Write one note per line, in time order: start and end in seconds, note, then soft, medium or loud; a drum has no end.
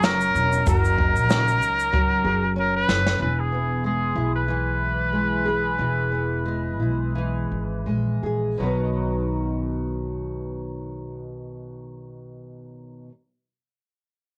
0.00 0.31 F#1 loud
0.00 0.65 F#3 medium
0.00 1.27 C#4 medium
0.00 0.96 D#4 medium
0.00 0.65 A#4 medium
0.00 snare loud
0.00 shaker medium
0.04 0.67 A#4 loud
0.21 shaker soft
0.35 0.64 E1 medium
0.35 shaker medium
0.52 shaker soft
0.66 1.12 F#1 loud
0.66 1.91 F#3 medium
0.66 2.24 A#4 medium
0.66 2.53 A#4 loud
0.66 kick loud
0.66 shaker medium
0.85 shaker medium
0.97 3.26 D#4 medium
0.97 kick medium
1.16 1.62 A#1 medium
1.16 shaker soft
1.29 2.55 C#4 medium
1.29 snare loud
1.29 shaker medium
1.48 shaker soft
1.62 2.21 C#2 medium
1.62 shaker medium
1.79 shaker soft
1.92 3.26 F#3 medium
1.92 kick medium
2.24 2.84 F#1 medium
2.24 2.41 G#4 medium
2.56 3.27 C#4 medium
2.56 2.74 A#4 loud
2.76 3.18 B4 loud
2.88 3.17 F#1 medium
2.88 snare medium
3.06 snare medium
3.20 4.11 E1 medium
3.20 4.47 E3 medium
3.20 3.41 B4 medium
3.40 3.85 G#4 medium
3.52 6.11 B3 medium
3.84 5.11 G#3 medium
3.84 4.31 G#4 medium
4.15 5.75 B1 medium
4.15 6.79 E4 medium
4.36 7.84 B4 medium
4.48 5.77 E3 medium
5.13 6.44 G#3 medium
5.45 8.22 G#4 medium
5.78 6.81 E1 medium
5.78 7.14 E3 medium
6.12 8.61 B3 medium
6.46 7.85 G#3 medium
6.80 7.47 B1 medium
6.80 8.62 E4 medium
7.15 8.59 E3 medium
7.52 7.84 G#1 medium
7.86 8.21 A#1 medium
7.86 8.59 G#3 soft
8.23 8.57 A#1 medium
8.23 8.63 G#4 medium
8.58 13.05 B1 medium
8.58 13.08 B2 medium
8.58 13.09 D#3 medium
8.58 13.09 F#3 medium
8.58 13.10 B3 medium
8.62 13.10 D#4 medium
8.62 13.11 B4 medium